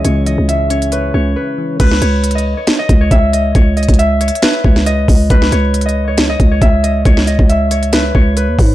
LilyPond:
<<
  \new Staff \with { instrumentName = "Harp" } { \time 4/4 \key cis \minor \tempo 4 = 137 cis''8 dis''8 e''8 cis''8 b'8 cis''8 b'4 | b'8 cis''8. dis''8 cis''8 dis''8 cis''16 e''8 dis''8 | cis''8 dis''8 e''8 cis''8 b'8 cis''8 dis''4 | b'8 cis''8. dis''8 cis''8 dis''8 cis''16 e''8 dis''8 |
cis''8 dis''8 e''8 cis''8 b'8 cis''8 b'4 | }
  \new Staff \with { instrumentName = "French horn section" } { \time 4/4 \key cis \minor <cis cis' e' gis'>1 | r1 | r1 | r1 |
r1 | }
  \new Staff \with { instrumentName = "Synth keys" } { \time 4/4 \key cis \minor <cis e cis' cis''>8 e8 gis8 cis'8 cis''8 cis'4 e8 | r1 | r1 | r1 |
r1 | }
  \new Staff \with { instrumentName = "808-style bass" } { \clef bass \time 4/4 \key cis \minor cis,8. cis,4.~ cis,16 cis,8 r4 | cis,8 cis,4~ cis,16 r8. cis,8 cis,4 | cis,8. cis,4 r8. cis,4 cis,8 | cis,8 cis,2 cis,8 cis,4 |
cis,8. cis,4.~ cis,16 cis,8. dis,16 gis,8 | }
  \new DrumStaff \with { instrumentName = "Drums" } \drummode { \time 4/4 hh8 hh8 hh8 hh16 hh16 hh4 r4 | <cymc hh bd>16 sn16 hh8 \tuplet 3/2 { hh16 hh16 hh16 r16 r16 r16 } <hh sn>8 <hh bd>8 <hh bd>8 hh8 | <hh bd>8 hh32 hh32 <hh bd>32 hh32 \tuplet 3/2 { hh16 r16 r16 hh16 hh16 hh16 } <hh sn>8 bd16 sn16 hh8 <hho bd>8 | <hh bd>16 sn16 hh8 \tuplet 3/2 { hh16 hh16 hh16 r16 r16 r16 } <hh sn>8 <hh bd>8 <hh bd>8 hh8 |
<hh bd>16 sn16 hh16 bd16 hh8 hh16 hh16 <hh sn>8 bd8 hh8 <hho bd>8 | }
>>